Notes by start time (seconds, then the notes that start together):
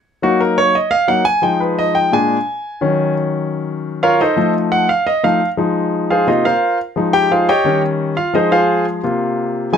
0.22 F#3 A#3 D#4 F#4
0.41 A#4
0.58 C#5
0.75 D#5
0.91 F5
1.08 F#3 A#3 D#4 F#5
1.25 G#5
1.42 F3 G#3 D#4 G5
1.60 B4
1.79 D#5
1.95 G5
2.12 A#2 G#3 D4 G#5
2.81 D#3 F#3 C#4
4.03 F4 A#4 C#5 F5
4.21 D#4 A4 C5 D#5
4.36 F3 A3 D#4
4.72 F#5
4.89 F5
5.07 D#5
5.23 F3 A3 D#4 F5
5.57 F3 G#3 D#4
6.10 F4 G#4 C5 F5
6.27 C3 A#3 D#4 F4 D#5
6.45 F4 A#4 C5 F5
6.96 F3 G#3 D#4
7.13 G4 G5
7.31 F4 G#4 C5 F5
7.49 G4 C#5 D#5 G5
7.64 D#3 G3 C#4
8.17 F4 F5
8.34 F3 G#3 D#4 G#4 C5 D#5
8.52 F4 G#4 C5 F5
9.03 C3 A#3 F4
9.72 F3 G#3 D#4 G#5